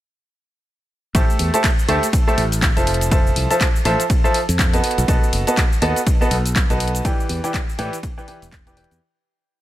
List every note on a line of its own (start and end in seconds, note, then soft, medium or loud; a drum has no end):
1.15 1.25 A1 loud
1.15 1.50 A3 medium
1.15 1.50 G4 medium
1.15 1.50 A4 medium
1.15 1.50 C5 medium
1.15 1.50 E5 medium
1.15 1.50 A5 medium
1.15 kick loud
1.15 closed hi-hat medium
1.15 ride medium
1.15 shaker medium
1.30 shaker soft
1.39 1.49 E2 medium
1.39 open hi-hat loud
1.54 1.67 A3 medium
1.54 1.67 G4 medium
1.54 1.67 A4 medium
1.54 1.67 C5 medium
1.54 1.67 E5 medium
1.54 1.67 A5 medium
1.54 closed hi-hat medium
1.54 shaker medium
1.64 kick loud
1.64 clap loud
1.64 closed hi-hat medium
1.64 ride medium
1.64 shaker medium
1.79 shaker soft
1.88 1.98 D2 loud
1.88 2.05 A3 loud
1.88 2.05 G4 medium
1.88 2.05 A4 medium
1.88 2.05 C5 medium
1.88 2.05 E5 medium
1.88 2.05 A5 loud
1.88 open hi-hat loud
2.03 closed hi-hat medium
2.03 shaker medium
2.13 kick loud
2.13 closed hi-hat medium
2.13 ride medium
2.13 shaker medium
2.28 2.41 A3 loud
2.28 2.41 G4 medium
2.28 2.41 A4 medium
2.28 2.41 C5 medium
2.28 2.41 E5 medium
2.28 2.41 A5 loud
2.28 shaker soft
2.38 2.70 A1 loud
2.38 open hi-hat loud
2.52 open hi-hat medium
2.52 shaker medium
2.62 kick loud
2.62 clap loud
2.62 ride medium
2.62 shaker medium
2.77 3.31 F1 medium
2.77 3.09 F3 medium
2.77 3.09 F4 medium
2.77 3.09 A4 medium
2.77 3.09 C5 medium
2.77 3.09 E5 medium
2.77 3.09 A5 medium
2.77 closed hi-hat medium
2.77 shaker soft
2.87 open hi-hat loud
2.94 closed hi-hat medium
3.01 closed hi-hat medium
3.01 shaker medium
3.11 3.47 F3 medium
3.11 3.47 F4 medium
3.11 3.47 A4 medium
3.11 3.47 C5 medium
3.11 3.47 E5 medium
3.11 3.47 A5 medium
3.11 kick loud
3.11 closed hi-hat medium
3.11 ride medium
3.11 shaker medium
3.27 shaker soft
3.36 3.46 C2 medium
3.36 open hi-hat loud
3.50 3.64 F3 medium
3.50 3.64 F4 medium
3.50 3.64 A4 medium
3.50 3.64 C5 medium
3.50 3.64 E5 medium
3.50 3.64 A5 medium
3.50 closed hi-hat medium
3.50 shaker medium
3.61 kick loud
3.61 clap loud
3.61 closed hi-hat medium
3.61 ride medium
3.61 shaker medium
3.76 shaker soft
3.85 3.95 A1 loud
3.85 4.02 F3 loud
3.85 4.02 F4 medium
3.85 4.02 A4 medium
3.85 4.02 C5 medium
3.85 4.02 E5 medium
3.85 4.02 A5 loud
3.85 open hi-hat loud
4.00 closed hi-hat medium
4.00 shaker medium
4.10 kick loud
4.10 closed hi-hat medium
4.10 ride medium
4.10 shaker medium
4.24 4.38 F3 loud
4.24 4.38 F4 medium
4.24 4.38 A4 medium
4.24 4.38 C5 medium
4.24 4.38 E5 medium
4.24 4.38 A5 loud
4.24 shaker soft
4.34 open hi-hat loud
4.49 4.79 F2 medium
4.49 open hi-hat medium
4.49 shaker medium
4.59 kick loud
4.59 clap loud
4.59 ride medium
4.59 shaker medium
4.73 5.06 B3 medium
4.73 5.06 F#4 medium
4.73 5.06 A4 medium
4.73 5.06 B4 medium
4.73 5.06 D#5 medium
4.73 5.06 A5 medium
4.73 closed hi-hat medium
4.73 shaker soft
4.84 open hi-hat loud
4.91 closed hi-hat medium
4.98 5.05 B1 loud
4.98 closed hi-hat medium
4.98 shaker medium
5.08 5.18 B1 loud
5.08 5.44 B3 medium
5.08 5.44 F#4 medium
5.08 5.44 A4 medium
5.08 5.44 B4 medium
5.08 5.44 D#5 medium
5.08 5.44 A5 medium
5.08 kick loud
5.08 closed hi-hat medium
5.08 ride medium
5.08 shaker medium
5.23 shaker soft
5.33 5.43 F#1 medium
5.33 open hi-hat loud
5.47 5.61 B3 medium
5.47 5.61 F#4 medium
5.47 5.61 A4 medium
5.47 5.61 B4 medium
5.47 5.61 D#5 medium
5.47 5.61 A5 medium
5.47 closed hi-hat soft
5.47 shaker medium
5.57 kick loud
5.57 clap loud
5.57 closed hi-hat medium
5.57 ride medium
5.57 shaker medium
5.73 shaker soft
5.82 5.92 D#2 loud
5.82 5.99 B3 loud
5.82 5.99 F#4 medium
5.82 5.99 A4 medium
5.82 5.99 B4 medium
5.82 5.99 D#5 medium
5.82 5.99 A5 loud
5.82 open hi-hat loud
5.96 closed hi-hat medium
5.96 shaker medium
6.07 kick loud
6.07 closed hi-hat medium
6.07 ride medium
6.07 shaker medium
6.21 6.34 B3 loud
6.21 6.34 F#4 medium
6.21 6.34 A4 medium
6.21 6.34 B4 medium
6.21 6.34 D#5 medium
6.21 6.34 A5 loud
6.21 shaker soft
6.31 6.63 B1 loud
6.31 open hi-hat loud
6.46 open hi-hat medium
6.46 shaker medium
6.56 kick loud
6.56 clap loud
6.56 ride medium
6.56 shaker medium
6.70 7.00 B1 loud
6.70 7.02 B3 medium
6.70 7.02 F#4 medium
6.70 7.02 A4 medium
6.70 7.02 B4 medium
6.70 7.02 D#5 medium
6.70 7.02 A5 medium
6.70 closed hi-hat medium
6.70 shaker soft
6.80 open hi-hat loud
6.88 closed hi-hat medium
6.95 closed hi-hat medium
6.95 shaker medium
7.05 7.40 E3 medium
7.05 7.40 E4 medium
7.05 7.40 G4 medium
7.05 7.40 B4 medium
7.05 7.40 D5 medium
7.05 7.40 G5 medium
7.05 kick loud
7.05 closed hi-hat medium
7.05 ride medium
7.05 shaker medium
7.20 shaker soft
7.29 7.39 E2 medium
7.29 open hi-hat loud
7.44 7.57 E3 medium
7.44 7.57 E4 medium
7.44 7.57 G4 medium
7.44 7.57 B4 medium
7.44 7.57 D5 medium
7.44 7.57 G5 loud
7.44 closed hi-hat soft
7.44 shaker medium
7.54 kick loud
7.54 clap loud
7.54 closed hi-hat medium
7.54 ride medium
7.54 shaker medium
7.69 shaker soft
7.79 7.89 A2 loud
7.79 7.95 E3 loud
7.79 7.95 E4 medium
7.79 7.95 G4 medium
7.79 7.95 B4 medium
7.79 7.95 D5 medium
7.79 7.95 G5 loud
7.79 open hi-hat loud
7.93 closed hi-hat medium
7.93 shaker medium
8.03 kick loud
8.03 closed hi-hat medium
8.03 ride medium
8.03 shaker medium
8.18 8.26 E3 loud
8.18 8.26 E4 medium
8.18 8.26 G4 medium
8.18 8.26 B4 medium
8.18 8.26 D5 medium
8.18 8.26 G5 loud
8.18 shaker soft
8.28 8.45 E3 medium
8.28 8.45 E4 medium
8.28 8.45 G4 medium
8.28 8.45 B4 medium
8.28 8.45 D5 medium
8.28 8.45 G5 medium
8.28 open hi-hat loud
8.42 8.84 E1 medium
8.42 open hi-hat medium
8.42 shaker medium
8.52 kick loud
8.52 clap loud
8.52 ride medium
8.52 shaker medium
8.67 8.75 E3 medium
8.67 8.75 E4 medium
8.67 8.75 G4 medium
8.67 8.75 B4 medium
8.67 8.75 D5 medium
8.67 8.75 G5 medium
8.67 closed hi-hat medium
8.67 shaker soft
8.77 8.99 E3 medium
8.77 8.99 E4 medium
8.77 8.99 G4 medium
8.77 8.99 B4 medium
8.77 8.99 D5 medium
8.77 8.99 G5 medium
8.77 open hi-hat loud
8.84 closed hi-hat medium
8.91 8.98 E2 loud
8.91 closed hi-hat medium
8.91 shaker medium